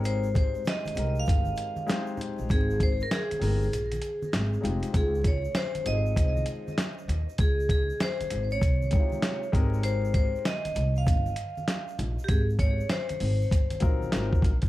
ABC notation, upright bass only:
X:1
M:4/4
L:1/16
Q:"Swing 16ths" 1/4=98
K:Ab
V:1 name="Upright bass" clef=bass
A,,,4 z2 C,,2 G,,,2 z4 z B,,, | A,,,4 z2 G,,,2 B,,,2 z2 A,,,2 F,,, z | D,,4 z2 A,,,2 C,,2 z4 E,, z | D,,4 z2 A,,,2 C,,2 z4 A,,,2- |
A,,,4 z2 C,,2 G,,,2 z4 B,,, z | A,,,4 z2 A,,,2 G,,,2 B,,,2 A,,, z B,,, C,, |]